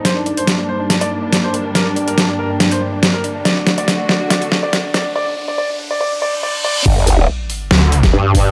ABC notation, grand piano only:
X:1
M:4/4
L:1/16
Q:1/4=141
K:Gm
V:1 name="Grand piano"
c D D c D D c D D d D D D c D D | B D D B D D B D D c D D D B D D | d D D d D D d D d D z d D D d D | d D D d d D D d d D d D d D d D |
z16 |]